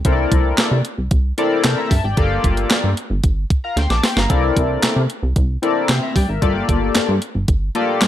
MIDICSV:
0, 0, Header, 1, 4, 480
1, 0, Start_track
1, 0, Tempo, 530973
1, 46, Time_signature, 4, 2, 24, 8
1, 7300, End_track
2, 0, Start_track
2, 0, Title_t, "Analog polysynth"
2, 0, Program_c, 0, 90
2, 46, Note_on_c, 0, 60, 81
2, 48, Note_on_c, 0, 64, 87
2, 49, Note_on_c, 0, 69, 88
2, 50, Note_on_c, 0, 70, 84
2, 52, Note_on_c, 0, 72, 75
2, 107, Note_off_c, 0, 72, 0
2, 110, Note_on_c, 0, 74, 97
2, 699, Note_off_c, 0, 60, 0
2, 700, Note_off_c, 0, 64, 0
2, 700, Note_off_c, 0, 69, 0
2, 701, Note_off_c, 0, 70, 0
2, 731, Note_off_c, 0, 74, 0
2, 1244, Note_on_c, 0, 60, 92
2, 1246, Note_on_c, 0, 64, 78
2, 1248, Note_on_c, 0, 69, 86
2, 1249, Note_on_c, 0, 70, 77
2, 1251, Note_on_c, 0, 74, 98
2, 1480, Note_off_c, 0, 74, 0
2, 1485, Note_on_c, 0, 79, 66
2, 1491, Note_on_c, 0, 74, 60
2, 1600, Note_off_c, 0, 79, 0
2, 1603, Note_off_c, 0, 74, 0
2, 1605, Note_on_c, 0, 82, 70
2, 1611, Note_on_c, 0, 76, 60
2, 1720, Note_off_c, 0, 82, 0
2, 1723, Note_off_c, 0, 76, 0
2, 1727, Note_on_c, 0, 81, 63
2, 1733, Note_on_c, 0, 76, 60
2, 1735, Note_off_c, 0, 60, 0
2, 1735, Note_off_c, 0, 64, 0
2, 1736, Note_off_c, 0, 69, 0
2, 1737, Note_off_c, 0, 70, 0
2, 1841, Note_off_c, 0, 81, 0
2, 1844, Note_off_c, 0, 76, 0
2, 1846, Note_on_c, 0, 79, 57
2, 1852, Note_on_c, 0, 74, 49
2, 1957, Note_off_c, 0, 74, 0
2, 1961, Note_on_c, 0, 58, 88
2, 1961, Note_on_c, 0, 65, 88
2, 1965, Note_on_c, 0, 67, 78
2, 1967, Note_on_c, 0, 69, 76
2, 1968, Note_on_c, 0, 74, 89
2, 2074, Note_off_c, 0, 79, 0
2, 2616, Note_off_c, 0, 58, 0
2, 2616, Note_off_c, 0, 65, 0
2, 2618, Note_off_c, 0, 67, 0
2, 2619, Note_off_c, 0, 69, 0
2, 2620, Note_off_c, 0, 74, 0
2, 3290, Note_on_c, 0, 82, 75
2, 3295, Note_on_c, 0, 77, 54
2, 3402, Note_off_c, 0, 82, 0
2, 3405, Note_off_c, 0, 77, 0
2, 3409, Note_on_c, 0, 84, 79
2, 3413, Note_on_c, 0, 79, 61
2, 3521, Note_off_c, 0, 84, 0
2, 3524, Note_off_c, 0, 79, 0
2, 3529, Note_on_c, 0, 86, 81
2, 3535, Note_on_c, 0, 81, 59
2, 3642, Note_off_c, 0, 86, 0
2, 3645, Note_off_c, 0, 81, 0
2, 3651, Note_on_c, 0, 84, 70
2, 3655, Note_on_c, 0, 79, 56
2, 3763, Note_off_c, 0, 84, 0
2, 3765, Note_off_c, 0, 79, 0
2, 3768, Note_on_c, 0, 82, 58
2, 3774, Note_on_c, 0, 77, 49
2, 3883, Note_on_c, 0, 60, 83
2, 3885, Note_on_c, 0, 64, 81
2, 3887, Note_on_c, 0, 69, 80
2, 3888, Note_on_c, 0, 70, 87
2, 3890, Note_on_c, 0, 74, 103
2, 3995, Note_off_c, 0, 82, 0
2, 3998, Note_off_c, 0, 77, 0
2, 4538, Note_off_c, 0, 60, 0
2, 4538, Note_off_c, 0, 64, 0
2, 4539, Note_off_c, 0, 69, 0
2, 4540, Note_off_c, 0, 70, 0
2, 4541, Note_off_c, 0, 74, 0
2, 5083, Note_on_c, 0, 60, 88
2, 5085, Note_on_c, 0, 64, 78
2, 5087, Note_on_c, 0, 69, 76
2, 5089, Note_on_c, 0, 70, 82
2, 5089, Note_on_c, 0, 74, 104
2, 5326, Note_off_c, 0, 69, 0
2, 5326, Note_on_c, 0, 84, 67
2, 5327, Note_off_c, 0, 70, 0
2, 5328, Note_off_c, 0, 74, 0
2, 5332, Note_on_c, 0, 79, 59
2, 5440, Note_off_c, 0, 84, 0
2, 5443, Note_off_c, 0, 79, 0
2, 5446, Note_on_c, 0, 82, 73
2, 5452, Note_on_c, 0, 76, 61
2, 5560, Note_off_c, 0, 82, 0
2, 5563, Note_off_c, 0, 76, 0
2, 5567, Note_on_c, 0, 79, 70
2, 5571, Note_on_c, 0, 74, 55
2, 5574, Note_off_c, 0, 60, 0
2, 5575, Note_off_c, 0, 64, 0
2, 5680, Note_off_c, 0, 79, 0
2, 5683, Note_off_c, 0, 74, 0
2, 5686, Note_on_c, 0, 76, 51
2, 5690, Note_on_c, 0, 70, 49
2, 5799, Note_on_c, 0, 58, 89
2, 5801, Note_on_c, 0, 65, 82
2, 5804, Note_on_c, 0, 67, 80
2, 5806, Note_on_c, 0, 69, 86
2, 5808, Note_on_c, 0, 74, 108
2, 5914, Note_off_c, 0, 76, 0
2, 5916, Note_off_c, 0, 70, 0
2, 6455, Note_off_c, 0, 58, 0
2, 6456, Note_off_c, 0, 65, 0
2, 6458, Note_off_c, 0, 67, 0
2, 6459, Note_off_c, 0, 69, 0
2, 6460, Note_off_c, 0, 74, 0
2, 7005, Note_on_c, 0, 58, 98
2, 7006, Note_on_c, 0, 65, 89
2, 7009, Note_on_c, 0, 67, 85
2, 7009, Note_on_c, 0, 69, 87
2, 7012, Note_on_c, 0, 74, 94
2, 7300, Note_off_c, 0, 58, 0
2, 7300, Note_off_c, 0, 65, 0
2, 7300, Note_off_c, 0, 67, 0
2, 7300, Note_off_c, 0, 69, 0
2, 7300, Note_off_c, 0, 74, 0
2, 7300, End_track
3, 0, Start_track
3, 0, Title_t, "Analog synth bass"
3, 0, Program_c, 1, 38
3, 45, Note_on_c, 1, 36, 113
3, 240, Note_off_c, 1, 36, 0
3, 286, Note_on_c, 1, 36, 102
3, 481, Note_off_c, 1, 36, 0
3, 526, Note_on_c, 1, 48, 47
3, 574, Note_off_c, 1, 48, 0
3, 646, Note_on_c, 1, 48, 106
3, 743, Note_off_c, 1, 48, 0
3, 887, Note_on_c, 1, 36, 86
3, 984, Note_off_c, 1, 36, 0
3, 1005, Note_on_c, 1, 36, 100
3, 1200, Note_off_c, 1, 36, 0
3, 1488, Note_on_c, 1, 48, 106
3, 1584, Note_off_c, 1, 48, 0
3, 1725, Note_on_c, 1, 43, 91
3, 1823, Note_off_c, 1, 43, 0
3, 1846, Note_on_c, 1, 32, 96
3, 1944, Note_off_c, 1, 32, 0
3, 1965, Note_on_c, 1, 31, 107
3, 2160, Note_off_c, 1, 31, 0
3, 2207, Note_on_c, 1, 31, 104
3, 2401, Note_off_c, 1, 31, 0
3, 2566, Note_on_c, 1, 43, 86
3, 2663, Note_off_c, 1, 43, 0
3, 2803, Note_on_c, 1, 31, 97
3, 2902, Note_off_c, 1, 31, 0
3, 2926, Note_on_c, 1, 31, 96
3, 3121, Note_off_c, 1, 31, 0
3, 3404, Note_on_c, 1, 38, 102
3, 3502, Note_off_c, 1, 38, 0
3, 3525, Note_on_c, 1, 34, 92
3, 3623, Note_off_c, 1, 34, 0
3, 3765, Note_on_c, 1, 31, 100
3, 3863, Note_off_c, 1, 31, 0
3, 3887, Note_on_c, 1, 36, 119
3, 4081, Note_off_c, 1, 36, 0
3, 4127, Note_on_c, 1, 36, 108
3, 4322, Note_off_c, 1, 36, 0
3, 4367, Note_on_c, 1, 48, 48
3, 4414, Note_off_c, 1, 48, 0
3, 4487, Note_on_c, 1, 48, 107
3, 4584, Note_off_c, 1, 48, 0
3, 4726, Note_on_c, 1, 36, 83
3, 4823, Note_off_c, 1, 36, 0
3, 4846, Note_on_c, 1, 36, 96
3, 5041, Note_off_c, 1, 36, 0
3, 5325, Note_on_c, 1, 48, 108
3, 5423, Note_off_c, 1, 48, 0
3, 5566, Note_on_c, 1, 43, 99
3, 5663, Note_off_c, 1, 43, 0
3, 5685, Note_on_c, 1, 32, 94
3, 5783, Note_off_c, 1, 32, 0
3, 5806, Note_on_c, 1, 31, 113
3, 6001, Note_off_c, 1, 31, 0
3, 6046, Note_on_c, 1, 31, 104
3, 6241, Note_off_c, 1, 31, 0
3, 6286, Note_on_c, 1, 43, 49
3, 6334, Note_off_c, 1, 43, 0
3, 6407, Note_on_c, 1, 43, 118
3, 6504, Note_off_c, 1, 43, 0
3, 6646, Note_on_c, 1, 31, 85
3, 6743, Note_off_c, 1, 31, 0
3, 6765, Note_on_c, 1, 31, 105
3, 6960, Note_off_c, 1, 31, 0
3, 7246, Note_on_c, 1, 43, 117
3, 7300, Note_off_c, 1, 43, 0
3, 7300, End_track
4, 0, Start_track
4, 0, Title_t, "Drums"
4, 43, Note_on_c, 9, 42, 97
4, 45, Note_on_c, 9, 36, 127
4, 134, Note_off_c, 9, 42, 0
4, 136, Note_off_c, 9, 36, 0
4, 286, Note_on_c, 9, 36, 92
4, 287, Note_on_c, 9, 42, 91
4, 376, Note_off_c, 9, 36, 0
4, 377, Note_off_c, 9, 42, 0
4, 524, Note_on_c, 9, 42, 107
4, 526, Note_on_c, 9, 38, 127
4, 526, Note_on_c, 9, 39, 103
4, 614, Note_off_c, 9, 42, 0
4, 616, Note_off_c, 9, 38, 0
4, 616, Note_off_c, 9, 39, 0
4, 765, Note_on_c, 9, 42, 72
4, 856, Note_off_c, 9, 42, 0
4, 1003, Note_on_c, 9, 42, 80
4, 1005, Note_on_c, 9, 36, 123
4, 1093, Note_off_c, 9, 42, 0
4, 1096, Note_off_c, 9, 36, 0
4, 1246, Note_on_c, 9, 42, 70
4, 1336, Note_off_c, 9, 42, 0
4, 1486, Note_on_c, 9, 38, 127
4, 1486, Note_on_c, 9, 39, 99
4, 1486, Note_on_c, 9, 42, 93
4, 1576, Note_off_c, 9, 38, 0
4, 1576, Note_off_c, 9, 39, 0
4, 1577, Note_off_c, 9, 42, 0
4, 1726, Note_on_c, 9, 36, 108
4, 1728, Note_on_c, 9, 46, 77
4, 1816, Note_off_c, 9, 36, 0
4, 1818, Note_off_c, 9, 46, 0
4, 1963, Note_on_c, 9, 42, 87
4, 1966, Note_on_c, 9, 36, 127
4, 2054, Note_off_c, 9, 42, 0
4, 2056, Note_off_c, 9, 36, 0
4, 2207, Note_on_c, 9, 36, 91
4, 2208, Note_on_c, 9, 42, 79
4, 2297, Note_off_c, 9, 36, 0
4, 2298, Note_off_c, 9, 42, 0
4, 2326, Note_on_c, 9, 42, 55
4, 2416, Note_off_c, 9, 42, 0
4, 2445, Note_on_c, 9, 42, 103
4, 2446, Note_on_c, 9, 38, 127
4, 2446, Note_on_c, 9, 39, 105
4, 2535, Note_off_c, 9, 42, 0
4, 2537, Note_off_c, 9, 38, 0
4, 2537, Note_off_c, 9, 39, 0
4, 2687, Note_on_c, 9, 42, 71
4, 2778, Note_off_c, 9, 42, 0
4, 2925, Note_on_c, 9, 42, 84
4, 2927, Note_on_c, 9, 36, 126
4, 3015, Note_off_c, 9, 42, 0
4, 3017, Note_off_c, 9, 36, 0
4, 3168, Note_on_c, 9, 36, 103
4, 3168, Note_on_c, 9, 42, 66
4, 3258, Note_off_c, 9, 36, 0
4, 3258, Note_off_c, 9, 42, 0
4, 3407, Note_on_c, 9, 38, 64
4, 3408, Note_on_c, 9, 42, 90
4, 3498, Note_off_c, 9, 38, 0
4, 3499, Note_off_c, 9, 42, 0
4, 3527, Note_on_c, 9, 42, 52
4, 3528, Note_on_c, 9, 38, 65
4, 3617, Note_off_c, 9, 42, 0
4, 3618, Note_off_c, 9, 38, 0
4, 3648, Note_on_c, 9, 38, 108
4, 3650, Note_on_c, 9, 46, 80
4, 3738, Note_off_c, 9, 38, 0
4, 3741, Note_off_c, 9, 46, 0
4, 3768, Note_on_c, 9, 38, 98
4, 3858, Note_off_c, 9, 38, 0
4, 3886, Note_on_c, 9, 42, 97
4, 3887, Note_on_c, 9, 36, 127
4, 3976, Note_off_c, 9, 42, 0
4, 3977, Note_off_c, 9, 36, 0
4, 4127, Note_on_c, 9, 36, 94
4, 4128, Note_on_c, 9, 42, 87
4, 4218, Note_off_c, 9, 36, 0
4, 4219, Note_off_c, 9, 42, 0
4, 4367, Note_on_c, 9, 42, 103
4, 4369, Note_on_c, 9, 38, 127
4, 4369, Note_on_c, 9, 39, 102
4, 4457, Note_off_c, 9, 42, 0
4, 4459, Note_off_c, 9, 38, 0
4, 4459, Note_off_c, 9, 39, 0
4, 4608, Note_on_c, 9, 42, 68
4, 4698, Note_off_c, 9, 42, 0
4, 4845, Note_on_c, 9, 42, 83
4, 4847, Note_on_c, 9, 36, 127
4, 4936, Note_off_c, 9, 42, 0
4, 4937, Note_off_c, 9, 36, 0
4, 5088, Note_on_c, 9, 42, 67
4, 5179, Note_off_c, 9, 42, 0
4, 5327, Note_on_c, 9, 38, 118
4, 5327, Note_on_c, 9, 39, 95
4, 5327, Note_on_c, 9, 42, 86
4, 5417, Note_off_c, 9, 38, 0
4, 5417, Note_off_c, 9, 39, 0
4, 5418, Note_off_c, 9, 42, 0
4, 5566, Note_on_c, 9, 36, 108
4, 5569, Note_on_c, 9, 46, 82
4, 5656, Note_off_c, 9, 36, 0
4, 5659, Note_off_c, 9, 46, 0
4, 5805, Note_on_c, 9, 42, 96
4, 5806, Note_on_c, 9, 36, 127
4, 5895, Note_off_c, 9, 42, 0
4, 5896, Note_off_c, 9, 36, 0
4, 6046, Note_on_c, 9, 36, 99
4, 6047, Note_on_c, 9, 42, 84
4, 6137, Note_off_c, 9, 36, 0
4, 6137, Note_off_c, 9, 42, 0
4, 6284, Note_on_c, 9, 42, 109
4, 6286, Note_on_c, 9, 38, 124
4, 6286, Note_on_c, 9, 39, 102
4, 6375, Note_off_c, 9, 42, 0
4, 6377, Note_off_c, 9, 38, 0
4, 6377, Note_off_c, 9, 39, 0
4, 6525, Note_on_c, 9, 42, 76
4, 6615, Note_off_c, 9, 42, 0
4, 6763, Note_on_c, 9, 42, 84
4, 6765, Note_on_c, 9, 36, 124
4, 6854, Note_off_c, 9, 42, 0
4, 6855, Note_off_c, 9, 36, 0
4, 7006, Note_on_c, 9, 42, 67
4, 7096, Note_off_c, 9, 42, 0
4, 7247, Note_on_c, 9, 38, 120
4, 7247, Note_on_c, 9, 39, 107
4, 7248, Note_on_c, 9, 42, 89
4, 7300, Note_off_c, 9, 38, 0
4, 7300, Note_off_c, 9, 39, 0
4, 7300, Note_off_c, 9, 42, 0
4, 7300, End_track
0, 0, End_of_file